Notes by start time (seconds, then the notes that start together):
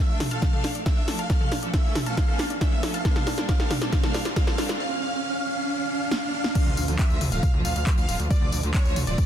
Already playing: riser
0.00 E5
0.09 F3 A3 D4 A4 F5
0.20 D4, snare, open hi-hat, mid tom
0.31 F3 A3 D4 A4 F5 A5, closed hi-hat
0.42 D4 F5, kick, snare, closed hi-hat, mid tom
0.53 F3 A3 D4 A4, mid tom
0.64 D4, snare, open hi-hat
0.75 D5, closed hi-hat
0.86 F3 A3 D4 A4 E5, kick, snare, closed hi-hat
0.97 F5
1.08 F3 A3 D4 A4, snare, open hi-hat
1.19 F5 A5, closed hi-hat
1.30 F3 A3 C#4 D4 A4 F5, kick, snare, closed hi-hat
1.41 A4, mid tom
1.52 D4, snare, open hi-hat
1.63 F3 A3 C#4 A4 D5, closed hi-hat
1.73 F3 A3 C#4 D4 A4 E5, kick, snare, closed hi-hat
1.84 F3 A3 C#4 A4 F5
1.95 D4, snare, open hi-hat, mid tom
2.06 F3 A3 C#4 A4 F5 A5, closed hi-hat
2.17 D4, kick, snare, closed hi-hat
2.28 F3 A3 C#4 A4
2.39 D4, snare, open hi-hat
2.50 D5, closed hi-hat
2.61 F3 A3 C#4 D4 A4 E5, kick, snare, closed hi-hat
2.72 F5
2.83 F3 A3 C#4 D4 A4, snare, open hi-hat
2.94 F5 A5, closed hi-hat
3.05 G3 A#3 D4 A4 F5, kick, snare, closed hi-hat
3.16 A4, snare, mid tom
3.27 D4, snare, open hi-hat
3.38 G3 A#3 D4 A4 D5, snare, closed hi-hat
3.49 G3 A#3 D4 A4 F5, kick, snare, closed hi-hat
3.60 G3 A#3 D4 A4, snare
3.71 D4, snare, open hi-hat, mid tom
3.82 G3 A#3 D4 A4 D5, snare, closed hi-hat
3.92 D4 F5, kick, snare, closed hi-hat, mid tom
4.03 G3 A#3 D4 A4, snare, mid tom
4.14 D4, snare, open hi-hat
4.25 D5, snare, closed hi-hat
4.36 G3 A#3 D4 A4 F5, kick, snare, closed hi-hat
4.47 A4, snare
4.58 G3 A#3 D4 A4, snare, open hi-hat
4.69 D5, snare, closed hi-hat
4.80 F5
5.02 F5
5.24 F5
5.46 F5
5.68 F5
5.89 F5
6.11 F5, snare
6.33 F5
6.44 snare
6.55 D3 F3 A3 F4 F5, kick, closed hi-hat, crash, tambourine
6.66 D2, mid tom
6.77 D2, open hi-hat, tambourine
6.88 D2 D3 F3 A3 F4, closed hi-hat, tambourine
6.99 D3 F3 A3 F4 E5, kick, clap, closed hi-hat, tambourine
7.10 D2 D3 F3 A3 F4, tambourine
7.21 D2, open hi-hat, mid tom, tambourine
7.32 D1 D3 F3 A3 F4 F5, closed hi-hat, tambourine
7.43 kick, closed hi-hat, mid tom, tambourine
7.54 D2 D3 F3 A3 F4, mid tom
7.65 D2 F5, open hi-hat, tambourine
7.76 D2, closed hi-hat, tambourine
7.87 D3 F3 A3 F4, kick, clap, closed hi-hat, tambourine
7.98 D2 F5, tambourine
8.09 D1 D3 F3 A3 F4, open hi-hat, tambourine
8.20 D2, closed hi-hat, tambourine
8.30 D3 F3 A3 F4 D5, kick, closed hi-hat, tambourine
8.41 D2, mid tom
8.52 D2, open hi-hat, tambourine
8.63 D2 D3 F3 A3 F4, closed hi-hat, tambourine
8.74 D3 F3 A3 F4 C#5, kick, clap, closed hi-hat, tambourine
8.85 D2 D3 F3 A3 F4, tambourine
8.96 D2, open hi-hat, mid tom, tambourine
9.07 D1 D3 F3 A3 F4 D5, closed hi-hat, tambourine
9.18 kick, closed hi-hat, tambourine